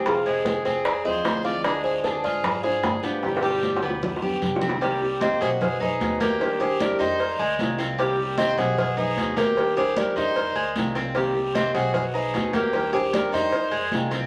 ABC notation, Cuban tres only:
X:1
M:4/4
L:1/8
Q:1/4=152
K:Gphr
V:1 name="Cuban tres"
C A,2 C2 A2 F | A,2 D F2 A2 =B,- | =B, G,2 B,2 G2 C | [K:Cm] G,2 C ^F2 ^D2 B,- |
B, G2 E2 A,2 C | G,2 C ^F2 ^D2 B,- | B, G2 E2 A,2 C | G,2 C ^F2 ^D2 B,- |
B, G2 E2 A,2 C |]